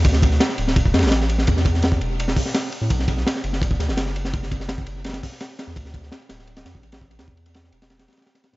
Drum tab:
RD |x---x---x---x---x---xxxxx---x---|x---x---x---x---x-------x---x---|x---x---x---x---x---x---x---x---|x---x---x---x---xxx-----x---x---|
HH |--------------------------------|--------------------o-----------|--------------------------------|--------------------o-----------|
SD |--o---o-o-o---o-----ooooo-o---o-|--o---o-o---------o---o-o-------|--o---o-o-o---o-----o-o-o-o---o-|--o---o-o-------ooo---o-o---o-o-|
BD |o---o-----------o-o-------------|o---o-----o---------o-----------|o---o-----------o-o-------------|o---o-----o---------o-----------|

RD |x---x---x---x---x-x-x---x-x---x-|x---x-x-x---x-x-x-x-xxxxx-x-x-x-|
HH |--------------------------------|--------------------------------|
SD |--o---o-o-o-o-o---o-o-----o-----|o-------o-o---o-o-o-ooooo-o-o-o-|
BD |o---o-----------------o-----o---|--o-----------------------------|